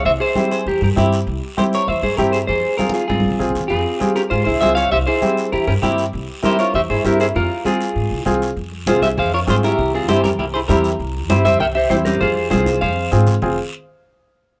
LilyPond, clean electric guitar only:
\new Staff \with { instrumentName = "Clean electric guitar" } { \time 4/4 \key f \minor \tempo 4 = 198 <c'' e''>8 <aes' c''>4 <aes' c''>8 <g' bes'>8 <g' bes'>8 <e' g'>8. r16 | r4 <g' c''>8 <bes' des''>8 <c'' e''>8 <aes' c''>8 <g' bes'>8 <aes' c''>8 | <aes' c''>4 <f' bes'>8 <f' aes'>8 <f' aes'>4. r8 | <f' aes'>4. <g' bes'>8 <aes' c''>8 <aes' c''>8 <c'' e''>8 <des'' f''>8 |
<c'' e''>8 <aes' c''>4. <g' bes'>8 <g' bes'>8 <e' g'>8. r16 | r4 <g' c''>8 <bes' des''>8 <c'' e''>8 <aes' c''>8 <g' bes'>8 <aes' c''>8 | <f' bes'>4 <f' aes'>2 r4 | r4 <aes' c''>8 <c'' e''>8 <c'' f''>8 <bes' des''>8 <aes' c''>8 <g' bes'>8~ |
<g' bes'>8 <f' aes'>8 <g' c''>8 <g' bes'>8 <e' g'>8 <aes' c''>8 <g' bes'>8. r16 | r4 <g' c''>8 <c'' e''>8 <e'' g''>8 <c'' e''>8 <g' c''>8 <g' bes'>8 | <aes' c''>4 <aes' c''>4 <c'' f''>4 r4 | r1 | }